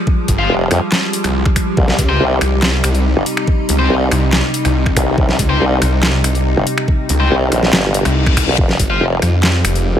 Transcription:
0.00 1.73 F3 medium
0.00 8.54 G3 medium
0.00 1.73 G#3 medium
0.07 kick loud
0.28 0.48 G1 loud
0.28 kick medium
0.28 closed hi-hat medium
0.39 0.51 F4 medium
0.39 0.51 C5 medium
0.39 0.51 F5 medium
0.50 0.69 F1 loud
0.71 0.80 F2 loud
0.71 finger snap medium
0.71 open hi-hat medium
0.92 snare loud
0.92 clap medium
1.13 closed hi-hat medium
1.24 1.44 C2 loud
1.24 finger snap medium
1.24 closed hi-hat soft
1.46 finger snap medium
1.46 kick loud
1.56 finger snap medium
1.56 kick medium
1.56 open hi-hat medium
1.77 1.97 C2 loud
1.77 8.54 C3 medium
1.77 8.54 D#4 loud
1.77 kick loud
1.88 snare soft
1.98 2.18 C#2 loud
1.98 kick medium
1.98 closed hi-hat medium
2.09 2.22 C4 medium
2.09 2.22 G4 medium
2.09 2.22 C5 medium
2.20 2.39 C2 loud
2.41 2.82 C2 loud
2.41 finger snap medium
2.41 open hi-hat medium
2.62 snare loud
2.62 clap medium
2.84 3.14 C2 loud
2.84 finger snap medium
2.84 closed hi-hat medium
2.95 closed hi-hat soft
3.16 3.25 G1 loud
3.26 open hi-hat medium
3.37 finger snap medium
3.47 kick loud
3.69 3.88 C#2 loud
3.69 closed hi-hat medium
3.79 3.92 C4 medium
3.79 3.92 G4 medium
3.79 3.92 C5 medium
3.90 4.10 C2 loud
4.11 4.42 C2 loud
4.11 finger snap medium
4.11 open hi-hat medium
4.33 snare loud
4.33 clap medium
4.54 closed hi-hat medium
4.65 4.95 C2 medium
4.65 finger snap medium
4.65 closed hi-hat soft
4.86 finger snap medium
4.86 kick loud
4.96 5.16 C2 medium
4.96 finger snap medium
4.96 kick medium
4.96 open hi-hat loud
5.18 5.37 C2 loud
5.18 kick loud
5.29 snare soft
5.39 5.59 C#2 loud
5.39 kick medium
5.39 closed hi-hat medium
5.50 5.62 C4 medium
5.50 5.62 G4 medium
5.50 5.62 C5 medium
5.60 5.80 C2 loud
5.82 6.22 C2 loud
5.82 finger snap medium
5.82 open hi-hat medium
6.03 snare loud
6.03 clap medium
6.24 6.55 C2 loud
6.24 finger snap medium
6.24 closed hi-hat medium
6.35 closed hi-hat soft
6.56 6.65 G1 loud
6.67 open hi-hat loud
6.78 finger snap medium
6.88 kick loud
7.09 7.29 C#2 loud
7.09 closed hi-hat medium
7.20 7.32 C4 medium
7.20 7.32 G4 medium
7.20 7.32 C5 medium
7.30 7.50 C2 loud
7.52 7.71 A#1 loud
7.52 finger snap medium
7.52 open hi-hat medium
7.63 snare soft
7.73 8.03 G1 medium
7.73 snare loud
7.73 clap medium
7.73 reverse cymbal medium
7.94 closed hi-hat medium
8.05 8.46 C2 medium
8.05 finger snap medium
8.05 closed hi-hat soft
8.26 finger snap medium
8.26 kick loud
8.37 finger snap medium
8.37 kick medium
8.37 open hi-hat loud
8.48 8.56 C2 loud
8.58 8.78 F1 loud
8.58 9.99 G3 medium
8.58 9.99 G#3 medium
8.58 9.99 F4 medium
8.58 kick loud
8.69 snare soft
8.79 8.99 G1 loud
8.79 kick medium
8.79 closed hi-hat medium
8.90 9.02 F4 medium
8.90 9.02 C5 medium
8.90 9.02 F5 medium
9.01 9.20 F1 loud
9.22 9.63 F2 loud
9.22 finger snap soft
9.22 open hi-hat medium
9.43 snare loud
9.43 clap medium
9.65 9.95 F1 loud
9.65 finger snap medium
9.65 closed hi-hat medium
9.76 closed hi-hat soft

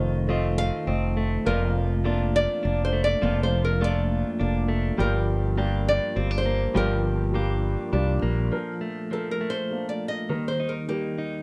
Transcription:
0.00 0.70 F1 loud
0.00 1.42 F1 soft
0.00 1.42 F2 medium
0.00 1.46 D#3 medium
0.00 0.27 A3 medium
0.00 0.28 F4 medium
0.00 0.30 F4 medium
0.00 0.58 C5 medium
0.00 0.29 D#5 medium
0.27 0.67 A3 medium
0.27 1.17 A3 soft
0.27 0.86 C4 soft
0.27 0.68 F4 medium
0.27 1.47 F4 medium
0.27 0.68 D#5 medium
0.58 1.13 F5 loud
0.86 1.37 F1 medium
0.86 1.26 A3 medium
0.86 1.52 C4 medium
0.86 1.27 F4 medium
0.86 1.27 D#5 medium
1.17 2.04 A3 medium
1.45 3.18 F1 medium
1.45 2.46 F1 medium
1.45 3.19 F2 medium
1.45 3.21 F3 medium
1.45 1.85 A#3 medium
1.45 2.06 F4 medium
1.45 1.85 A#4 medium
1.45 2.37 A#4 medium
1.45 1.86 D5 medium
2.04 2.92 A3 medium
2.04 2.44 A#3 medium
2.04 2.62 D4 medium
2.04 3.22 F4 medium
2.04 2.45 A4 medium
2.04 2.45 D5 medium
2.36 2.84 D5 loud
2.63 3.14 F1 medium
2.63 3.03 A#3 medium
2.63 3.81 D4 medium
2.63 3.04 A4 medium
2.63 3.04 D5 medium
2.85 3.04 C5 medium
2.93 3.80 A3 medium
3.04 3.43 D5 medium
3.22 4.95 F1 medium
3.22 4.22 F1 loud
3.22 4.95 F2 medium
3.22 4.98 F3 medium
3.22 3.62 A#3 medium
3.22 3.82 F4 medium
3.22 3.62 A4 medium
3.22 3.63 D5 medium
3.43 3.61 C5 medium
3.65 3.83 A#4 medium
3.81 4.67 A3 medium
3.81 4.21 A#3 medium
3.81 4.39 D4 medium
3.81 4.98 F4 medium
3.81 4.21 A4 medium
3.81 4.22 D5 medium
3.81 4.67 D5 medium
4.40 4.90 F1 medium
4.40 4.79 A#3 medium
4.40 5.58 D4 medium
4.40 4.80 A4 medium
4.40 4.80 D5 medium
4.68 5.04 A3 medium
4.97 6.71 G1 medium
4.97 5.98 G1 medium
4.97 6.71 G2 medium
4.97 6.74 F3 medium
4.97 5.38 G3 medium
4.97 5.38 F4 medium
4.97 5.57 G4 medium
4.97 5.84 A#4 medium
4.97 5.39 D5 medium
5.57 5.97 G3 medium
5.57 6.45 A#3 medium
5.57 6.16 D4 medium
5.57 5.97 F4 medium
5.57 6.74 G4 medium
5.57 5.98 D5 medium
5.89 6.37 D5 loud
6.15 6.66 G1 medium
6.15 6.55 G3 medium
6.15 6.31 C4 medium
6.15 6.56 F4 medium
6.15 6.56 D5 medium
6.31 7.34 D4 medium
6.38 6.77 C5 medium
6.46 7.33 A#3 medium
6.73 8.48 G1 soft
6.73 7.75 G1 loud
6.73 8.48 G2 medium
6.73 8.51 F3 medium
6.73 7.14 G3 medium
6.73 7.14 F4 medium
6.73 7.34 G4 medium
6.73 8.20 A#4 medium
6.73 7.15 D5 medium
7.32 7.73 G3 medium
7.32 8.21 A#3 medium
7.32 7.92 D4 medium
7.32 7.74 F4 medium
7.32 7.74 G4 medium
7.32 8.59 G4 medium
7.92 8.20 C2 medium
7.92 8.33 G3 medium
7.92 8.58 D4 medium
7.92 8.33 F4 medium
7.92 8.33 D5 medium
8.22 8.49 A#1 medium
8.22 8.58 A#3 medium
8.51 10.25 A#1 soft
8.51 10.26 A#2 soft
8.51 9.10 F3 medium
8.51 8.92 D4 medium
8.51 8.91 A4 medium
8.51 8.92 A#4 medium
8.81 9.40 A3 soft
9.10 10.29 F3 soft
9.10 9.51 D4 soft
9.10 9.51 A4 soft
9.10 9.31 A4 medium
9.10 9.52 A#4 soft
9.31 9.52 A#4 medium
9.41 10.36 A3 soft
9.50 9.88 C5 medium
9.70 10.11 A#3 medium
9.70 10.10 D4 soft
9.70 10.10 A4 soft
9.89 10.08 D5 medium
10.08 10.46 D#5 medium
10.29 11.43 D#2 soft
10.29 11.43 D#3 soft
10.29 11.43 D#3 medium
10.29 10.69 G3 soft
10.29 10.69 D#4 soft
10.29 10.70 A#4 medium
10.48 10.69 C5 medium
10.60 11.17 D#4 soft
10.69 10.87 A#4 medium
10.88 11.28 G3 soft
10.88 11.43 A#3 soft
10.88 11.29 D#4 soft
10.88 11.43 G4 medium
10.88 11.29 A#4 soft
11.18 11.43 D#4 soft

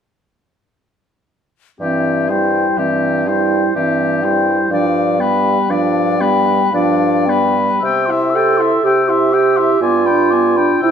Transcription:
1.80 2.66 G2 soft
1.80 2.31 E3 soft
1.80 2.31 C4 soft
1.80 2.31 G4 soft
1.80 2.32 E5 soft
2.29 2.80 G3 soft
2.29 2.80 E4 soft
2.29 2.79 C5 soft
2.29 2.80 G5 soft
2.78 3.64 G2 soft
2.78 3.29 E3 soft
2.78 3.30 C4 soft
2.78 3.29 G4 soft
2.78 3.28 E5 soft
3.26 3.75 G3 soft
3.26 3.75 E4 soft
3.26 3.75 C5 soft
3.26 3.74 G5 soft
3.74 4.59 G2 soft
3.74 4.25 E3 soft
3.74 4.25 C4 soft
3.74 4.26 G4 soft
3.74 4.24 E5 soft
4.22 4.71 G3 soft
4.22 4.70 E4 soft
4.22 4.71 C5 soft
4.22 4.70 G5 soft
4.70 5.57 G2 medium
4.70 5.22 F3 soft
4.70 5.21 D4 soft
4.70 5.22 D5 soft
4.70 5.21 F5 soft
5.19 5.72 G3 soft
5.19 5.71 B3 soft
5.19 5.72 B4 soft
5.19 5.71 G5 soft
5.69 6.60 G2 medium
5.69 6.22 F3 soft
5.69 6.23 D4 soft
5.69 6.23 D5 soft
5.69 6.21 F5 soft
6.19 6.73 G3 soft
6.19 6.72 B3 soft
6.19 6.73 B4 soft
6.19 6.72 G5 soft
6.72 7.70 G2 soft
6.72 7.29 F3 soft
6.72 7.29 D4 soft
6.72 7.31 D5 soft
6.72 7.27 F5 soft
7.26 7.82 G3 soft
7.26 7.82 B3 soft
7.26 7.83 B4 soft
7.26 7.56 G5 soft
7.81 8.72 C3 soft
7.81 8.10 G4 soft
7.81 8.12 G5 soft
7.81 8.07 E6 soft
8.06 8.37 E4 soft
8.06 8.32 C6 soft
8.10 8.37 E5 soft
8.30 8.86 A4 medium
8.30 8.59 E6 soft
8.35 8.61 G4 soft
8.35 8.62 G5 soft
8.57 8.83 E4 soft
8.57 8.85 E5 soft
8.57 8.82 C6 soft
8.82 9.70 C3 soft
8.82 9.10 G4 soft
8.82 9.83 G4 soft
8.82 9.12 G5 soft
8.82 9.10 E6 soft
9.08 9.35 E4 soft
9.08 9.35 E5 soft
9.08 9.34 C6 soft
9.32 9.60 G4 soft
9.32 9.59 G5 soft
9.32 9.58 E6 soft
9.56 9.82 E4 soft
9.56 9.81 E5 soft
9.56 9.80 C6 soft
9.81 10.71 G2 soft
9.81 10.09 B3 soft
9.81 10.83 F4 medium
9.81 10.07 G#5 soft
9.81 10.07 D6 soft
10.05 10.34 D4 soft
10.05 10.33 G5 soft
10.05 10.31 B5 soft
10.30 10.59 B3 soft
10.30 10.58 G#5 soft
10.30 10.58 D6 soft
10.56 10.83 D4 soft
10.56 10.82 G5 soft
10.56 10.80 B5 soft
10.81 10.91 C3 soft
10.81 10.91 E4 medium
10.81 10.91 E4 soft
10.81 10.91 G5 soft
10.81 10.91 E6 soft

